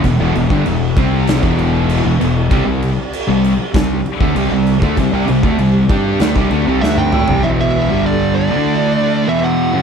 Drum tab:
CC |x-x-x-x-x-x-x-x-|x-x-x-x-x-x-x-x-|x-x-x-x-x-x-----|----------------|
SD |--------o-------|--------o-------|--------o---o---|----------------|
T1 |----------------|----------------|-------------o--|----------------|
T2 |----------------|----------------|--------------o-|----------------|
FT |----------------|----------------|---------------o|----------------|
BD |o--o--o--o------|o-------o--o---o|o--o--o--o------|----------------|